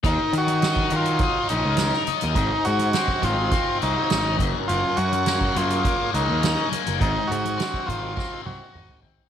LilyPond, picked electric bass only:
\new Staff \with { instrumentName = "Picked electric bass" } { \clef bass \time 4/4 \key ees \dorian \tempo 4 = 103 ees,16 r16 ees4 ees8 r8 bes,,16 des,8 r8 ees,16 | aes,,16 r16 aes,8 r8 aes,,8 r8 c,16 r16 aes,,8 ges,,16 r16 | ges,,16 r16 ges,4 ges,8 r8 des,16 ees,8 r8 ges,,16 | aes,,16 r16 aes,8 r8 aes,,8 r8 c,16 r16 aes,,8 aes,,16 r16 | }